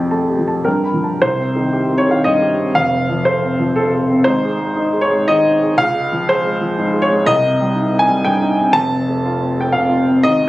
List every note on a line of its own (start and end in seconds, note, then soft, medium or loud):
0.00 0.62 F2 medium
0.00 0.38 F3 soft
0.00 0.65 G5 soft
0.00 0.11 A5 soft
0.11 0.35 A3 soft
0.11 0.40 A5 soft
0.30 0.58 G4 soft
0.38 0.62 F3 soft
0.48 0.65 A5 soft
0.64 1.18 G2 soft
0.64 1.19 A#4 medium
0.64 0.94 G5 soft
0.84 1.12 B5 soft
0.93 1.17 F3 soft
1.04 1.20 A5 soft
1.22 2.70 C2 medium
1.22 1.97 C5 medium
1.39 1.65 C4 soft
1.55 1.82 D#3 soft
1.73 1.99 G4 medium
1.90 2.16 C4 soft
1.98 2.10 C#5 medium
2.08 2.34 D#3 soft
2.08 2.23 F5 medium
2.24 2.51 G2 soft
2.24 2.74 D#5 medium
2.42 2.68 G4 soft
2.58 2.74 C4 soft
2.75 4.22 F1 medium
2.75 4.23 F2 medium
2.75 3.25 F5 loud
2.93 3.18 C4 soft
3.10 3.35 F3 soft
3.25 3.52 A4 medium
3.25 3.75 C5 medium
3.43 3.69 C4 soft
3.59 3.85 F3 soft
3.76 4.02 C3 soft
3.76 3.93 A4 medium
3.94 4.20 A4 soft
4.10 4.26 C4 soft
4.24 5.72 G#1 medium
4.24 5.73 G#2 medium
4.24 5.01 C5 loud
4.45 4.70 G#4 soft
4.59 4.86 G#3 soft
4.76 5.03 D#4 medium
4.93 5.20 G#4 soft
5.01 5.27 C#5 medium
5.11 5.38 G#3 soft
5.28 5.54 D#3 soft
5.28 5.77 D#5 loud
5.46 5.71 D#4 soft
5.62 5.78 G#4 medium
5.78 7.21 C#2 medium
5.78 6.27 F5 loud
5.94 6.20 G#3 soft
6.12 6.38 F3 medium
6.29 6.55 G#4 medium
6.29 6.77 C5 medium
6.44 6.70 G#3 medium
6.60 6.86 F3 soft
6.78 7.03 G#2 soft
6.93 7.19 G#4 medium
7.02 7.25 C#5 medium
7.10 7.26 G#3 medium
7.26 8.69 C2 medium
7.26 7.99 D#5 loud
7.44 7.69 C4 medium
7.60 7.85 G3 soft
7.74 8.00 D#4 medium
7.91 8.17 C4 soft
7.99 8.24 G#5 loud
8.09 8.34 G3 medium
8.24 8.50 G2 soft
8.24 8.73 G5 medium
8.42 8.67 D#4 soft
8.58 8.73 C4 medium
8.72 10.17 F1 medium
8.72 10.18 F2 medium
8.72 9.60 A5 loud
8.91 9.17 C4 soft
9.08 9.33 A3 medium
9.26 9.50 F4 medium
9.42 9.67 C4 soft
9.57 9.83 A3 soft
9.57 9.72 G5 medium
9.72 9.99 C3 soft
9.72 9.97 F5 medium
9.89 10.15 F4 medium
10.06 10.22 C4 soft
10.23 10.49 G#1 medium
10.23 10.49 G#2 medium
10.23 10.48 D#5 loud
10.41 10.49 C4 soft